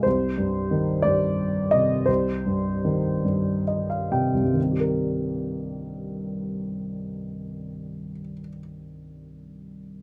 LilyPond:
<<
  \new Staff \with { instrumentName = "Grand piano" } { \time 6/8 \key c \minor \tempo 4. = 45 c''4. d''4 ees''8 | c''2 ees''16 f''16 g''8 | r2. | r2. | }
  \new Staff \with { instrumentName = "Grand piano" } { \clef bass \time 6/8 \key c \minor c,8 g,8 ees8 g,4 c8 | c,8 g,8 ees8 g,4 c8 | <c, g, ees c' g' bes'>2.~ | <c, g, ees c' g' bes'>2. | }
>>